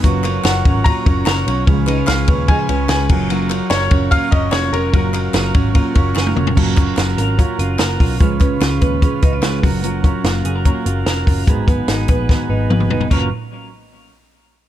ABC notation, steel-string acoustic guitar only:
X:1
M:4/4
L:1/8
Q:1/4=147
K:F#
V:1 name="Steel-string acoustic guitar"
[F,A,CEA] [CEA] [A,CEA] [CEA] [F,A,CEA] [CEA] [A,CEA] [CEA] | [C,E,G,CEB] [G,CEB] [G,CEB] [G,CEB] [C,E,G,CEB] [G,CEB] [G,CEB] [CEA] | [F,A,CEA] [CEA] [A,CEA] [CEA] [F,A,CEA] [CEA] [A,CEA] [EA] | [F,A,CEA] [CEA] [A,CEA] [CEA] [F,A,CEA] [CEA] [A,CEA] [CEA] |
[F,A,CEA] [CEA] [A,CEA] [CEA] [F,A,CEA] [CEA] [A,CEA] [CEA] | [C,E,G,CEB] [G,CEB] [G,CEB] [G,CEB] [C,E,G,CEB] [G,CEB] [G,CEB] [CEA] | [F,A,CEA] [CEA] [A,CEA] [CEA] [F,A,CEA] [CEA] [A,CEA] [CEA] | [G,,D,F,B,DB] [F,B,DB] [F,B,DB] [F,B,DB] [G,,D,F,B,DB] [F,B,DB] [F,B,DB] [F,B,DB] |
[F,A,CEA] z6 z |]